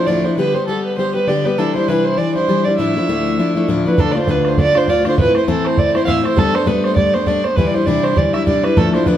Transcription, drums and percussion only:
3.98 bodhran medium
4.15 bodhran soft
4.27 bodhran medium
4.45 bodhran medium
4.58 bodhran medium
4.75 bodhran medium
4.88 bodhran medium
5.05 bodhran medium
5.18 bodhran medium
5.35 bodhran medium
5.48 bodhran medium
5.65 bodhran medium
5.78 bodhran medium
5.95 bodhran medium
6.08 bodhran medium
6.25 bodhran medium
6.37 bodhran medium
6.55 bodhran medium
6.67 bodhran medium
6.84 bodhran soft
6.97 bodhran medium
7.14 bodhran soft
7.27 bodhran medium
7.44 bodhran soft
7.57 bodhran medium
7.87 bodhran medium
8.04 bodhran medium
8.17 bodhran medium
8.34 bodhran medium
8.47 bodhran medium
8.64 bodhran medium
8.77 bodhran medium
8.94 bodhran medium
9.06 bodhran medium

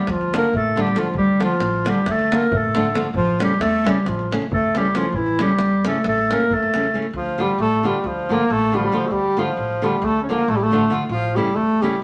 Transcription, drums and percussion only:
0.07 davul high medium
0.07 davul low medium
0.21 davul high soft
0.34 davul high medium
0.44 davul high soft
0.53 davul low medium
0.77 davul high medium
0.87 davul high soft
0.96 davul high medium
1.14 davul low medium
1.40 davul high medium
1.60 davul high medium
1.86 davul high medium
2.06 davul high medium
2.06 davul low medium
2.19 davul high soft
2.32 davul high medium
2.42 davul high soft
2.52 davul low loud
2.75 davul high medium
2.85 davul high soft
2.95 davul high medium
3.14 davul low medium
3.40 davul high medium
3.61 davul high medium
3.87 davul high medium
4.06 davul high medium
4.06 davul low medium
4.19 davul high soft
4.32 davul high medium
4.42 davul high soft
4.52 davul low loud
4.75 davul high medium
4.85 davul high soft
4.95 davul high medium
5.13 davul low medium
5.26 davul high soft
5.39 davul high medium
5.49 davul high soft
5.59 davul high medium
5.85 davul high medium
5.95 davul high soft
6.04 davul high medium
6.18 davul high soft
6.31 davul high medium
6.41 davul high soft
6.50 davul low medium
6.63 davul high soft
6.74 davul high medium
6.84 davul high soft
7.02 davul high soft

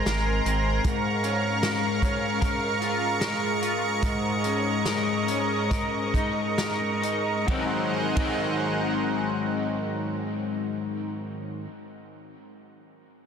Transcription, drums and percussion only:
0.06 snare loud
0.06 closed hi-hat medium
0.46 closed hi-hat soft
0.84 kick medium
0.84 closed hi-hat medium
1.24 closed hi-hat soft
1.63 snare loud
1.63 closed hi-hat medium
2.02 kick medium
2.02 closed hi-hat soft
2.42 kick medium
2.42 closed hi-hat medium
2.82 closed hi-hat soft
3.21 snare loud
3.21 closed hi-hat medium
3.62 closed hi-hat soft
4.03 kick loud
4.03 closed hi-hat medium
4.44 closed hi-hat soft
4.86 snare loud
4.86 closed hi-hat medium
5.28 closed hi-hat soft
5.71 kick medium
5.71 closed hi-hat medium
6.14 kick medium
6.14 closed hi-hat soft
6.58 snare loud
6.58 closed hi-hat medium
7.03 closed hi-hat soft
7.48 kick medium
7.48 ride medium
8.17 kick medium
8.17 ride medium

